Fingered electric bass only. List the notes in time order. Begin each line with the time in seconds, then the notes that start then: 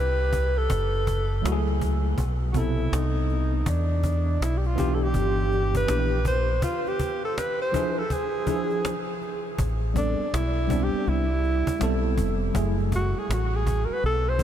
Already playing: C2
0.70 F#1
1.44 C#2
2.18 B1
2.92 C2
3.67 E2
4.41 B1
5.14 G1
5.89 A#1
9.59 A1
10.33 B1
11.07 C2
11.81 B1
12.18 F1
12.55 F#1
13.29 A1
14.03 B1